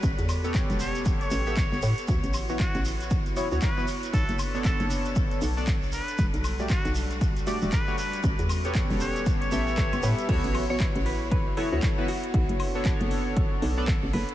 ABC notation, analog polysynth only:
X:1
M:4/4
L:1/16
Q:"Swing 16ths" 1/4=117
K:D
V:1 name="Analog polysynth"
z3 [B,GAc]8 [B,GAe] z4 | z3 [B,EFc] z6 [B,EFc] [B,EFc] z [B,EFB] z2 | z3 [B,DAc]8 [B,DAd] z4 | z3 [A,FGd] z6 [A,FGd] [A,FGd] z [A,FGc] z2 |
z3 [B,GAc]6- [B,GAc] [B,GAe]6 | [B,EFc]3 [B,EFc] z6 [B,EFc] [B,EFc] z [B,EFB] z2 | z3 [B,DAc]8 [B,DAd] z4 |]